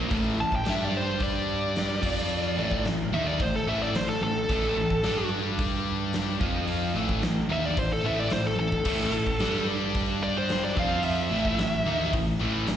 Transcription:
Already playing: A#2 F3 A#3
0.11 A1 A2 E3 A3, kick, open hi-hat
0.39 A1 A2 E3 A5
0.52 G5, kick
0.65 G2 G3 D4 G4, snare, open hi-hat
0.70 E5
0.85 D5
0.97 C5
1.20 D5, kick, open hi-hat
1.76 snare, open hi-hat
2.02 F2 F3 C4 F4, kick, crash
2.57 A1 A2 E3 A3
2.71 kick
2.85 A1 A2 E3, snare, open hi-hat
3.11 D#2 D#3 A#3 D#4 E5
3.28 D5
3.40 A1 A2 E3 C5, kick, open hi-hat
3.56 A4
3.66 A1 A2 E3 A3 E5
3.82 D5
3.93 A1 A2 E3 C5, snare, open hi-hat
4.09 A4
4.21 A1 A2 E3 A4
4.49 A1 A2 E3 A3, kick, open hi-hat
4.76 A1 A2 E3
4.90 kick
5.03 G2 G3 D4 G4, snare, open hi-hat
5.59 kick, open hi-hat
6.13 snare, open hi-hat
6.40 F2 F3 C4 F4, kick
6.67 open hi-hat
6.95 A1 A2 E3 A3
7.09 kick
7.22 A1 A2 E3, snare, open hi-hat
7.49 D#2 D#3 A#3 D#4 E5
7.65 D5
7.77 A1 A2 E3 C5, kick, open hi-hat
7.93 A4
8.03 A1 A2 E3 A3 E5
8.20 D5
8.30 A1 A2 E3 C5, snare, open hi-hat
8.47 A4
8.58 A1 A2 E3 A4
8.72 kick
8.85 A1 A2 E3 A3, kick, crash
9.12 A1 A2 E3
9.27 kick
9.39 G2 G3 D4 G4, snare, open hi-hat
9.94 kick, open hi-hat
10.23 D5
10.38 C5
10.49 snare, open hi-hat
10.65 D5
10.76 F2 F3 C4 F4 F5, kick
11.03 E5, open hi-hat
11.31 A1 A2 E3 A3
11.45 kick
11.58 A1 A2 E3, snare, open hi-hat
11.86 D#2 D#3 A#3 D#4
12.13 A1 A2 E3, kick, open hi-hat
12.40 A1 A2 E3 A3
12.67 A1 A2 E3, snare, open hi-hat

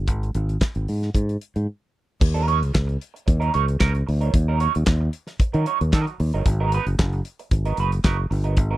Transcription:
0.08 G#1, kick, closed hi-hat
0.23 closed hi-hat
0.35 G#1, closed hi-hat
0.49 closed hi-hat
0.61 kick, snare, clap
0.75 G#1, closed hi-hat
0.88 G#2, open hi-hat
1.02 snare, closed hi-hat
1.15 G#2, kick, closed hi-hat
1.29 closed hi-hat
1.41 closed hi-hat
1.56 G#2, closed hi-hat
2.21 D#2, muted clean electric guitar stroke, kick, crash
2.34 F#3 C#4 D#4 A#4, closed hi-hat
2.47 F#3 C#4 D#4 C#5, closed hi-hat
2.61 C#2, muted clean electric guitar stroke, closed hi-hat
2.74 C#2, muted clean electric guitar stroke, kick, snare, clap
2.87 muted clean electric guitar stroke, closed hi-hat
3.01 closed hi-hat
3.14 muted clean electric guitar stroke, closed hi-hat
3.26 D#2, muted clean electric guitar stroke, kick, closed hi-hat
3.40 F#3 C#4 D#4 A#4, closed hi-hat
3.53 C#2 F#3 C#4 D#4 C#5, closed hi-hat
3.67 muted clean electric guitar stroke, closed hi-hat
3.79 C#2 F#3 C#4 D#4 A#4, kick, snare, clap
3.94 muted clean electric guitar stroke, closed hi-hat
4.07 D2, muted clean electric guitar stroke, open hi-hat
4.21 F#3 C#4 D#4 A#4, closed hi-hat
4.34 D#2, muted clean electric guitar stroke, kick, closed hi-hat
4.48 F#3 C#4 D#4 A#4
4.60 F#3 C#4 D#4 C#5, closed hi-hat
4.74 D#2, muted clean electric guitar stroke, closed hi-hat
4.87 D#2, muted clean electric guitar stroke, kick, snare, clap
5.01 muted clean electric guitar stroke
5.13 closed hi-hat
5.27 muted clean electric guitar stroke, snare, closed hi-hat
5.40 muted fingered electric bass stroke, muted clean electric guitar stroke, kick, closed hi-hat
5.53 D#3 F#3 C#4 D#4 A#4, closed hi-hat
5.66 F#3 C#4 D#4 C#5, closed hi-hat
5.80 D#2, muted clean electric guitar stroke, closed hi-hat
5.93 D#3 F#3 C#4 D#4 A#4, kick, snare, clap
6.07 muted clean electric guitar stroke, closed hi-hat
6.20 D#2, muted clean electric guitar stroke, open hi-hat
6.33 G1 F#3 C#4 D#4 A#4, closed hi-hat
6.46 G#1, kick, closed hi-hat
6.60 F#3 B3 D#4 A#4
6.72 F#3 B3 D#4 B4, closed hi-hat
6.87 F#1, muted clean electric guitar stroke, closed hi-hat
6.99 F#1, muted clean electric guitar stroke, kick, snare, clap
7.13 muted clean electric guitar stroke, closed hi-hat
7.25 closed hi-hat
7.39 muted clean electric guitar stroke, closed hi-hat
7.51 G#1, muted clean electric guitar stroke, kick, closed hi-hat
7.65 F#3 B3 D#4 A#4, closed hi-hat
7.77 F#1 F#3 B3 D#4 B4, closed hi-hat
7.92 closed hi-hat
8.04 F#1 F#3 B3 D#4 A#4, kick, snare, clap
8.18 muted clean electric guitar stroke
8.30 G1, muted clean electric guitar stroke, open hi-hat
8.44 F#3 B3 D#4 A#4, closed hi-hat
8.57 G#1, kick, closed hi-hat
8.71 F#3 B3 D#4 A#4

